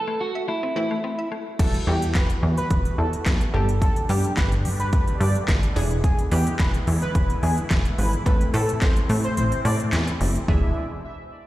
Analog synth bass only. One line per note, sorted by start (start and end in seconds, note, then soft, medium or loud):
1.59 1.77 E1 loud
1.87 2.17 E2 loud
2.15 2.33 E1 loud
2.43 2.61 E2 loud
2.71 2.89 E1 loud
2.98 3.16 E2 medium
3.26 3.44 B1 loud
3.54 3.90 G1 loud
4.09 4.27 G2 loud
4.37 4.66 G1 loud
4.65 4.94 G2 loud
4.93 5.11 G1 loud
5.20 5.39 G2 loud
5.48 5.66 G1 medium
5.76 6.12 E1 loud
6.32 6.50 E2 loud
6.60 6.78 E1 loud
6.87 7.05 E2 loud
7.15 7.33 E1 loud
7.43 7.61 E2 medium
7.71 7.89 E1 loud
7.98 8.16 G#1 medium
8.26 8.44 A1 loud
8.54 8.72 A2 loud
8.82 9.00 A1 loud
9.09 9.39 A2 loud
9.37 9.55 A1 loud
9.65 9.83 A2 medium
9.93 10.11 E2 loud
10.21 10.39 F#1 loud
10.48 10.74 E1 loud